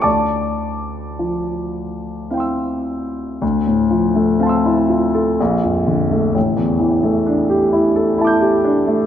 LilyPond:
<<
  \new Staff \with { instrumentName = "Grand piano" } { \time 3/4 \key d \minor \tempo 4 = 61 <d'' a'' d'''>2 <f'' g'' c''' e'''>4 | r4 <f'' a'' c''' e'''>4 r4 | r2 <e'' a'' d''' g'''>4 | }
  \new Staff \with { instrumentName = "Grand piano" } { \time 3/4 \key d \minor d,4 f4 <c' e'>4 | d,16 a,16 f16 a16 c'16 e'16 f'16 a'16 bes,,16 f,16 d16 a16 | a,,16 e,16 e16 a16 d'16 g'16 e'16 a'16 e'16 g'16 d'16 a16 | }
>>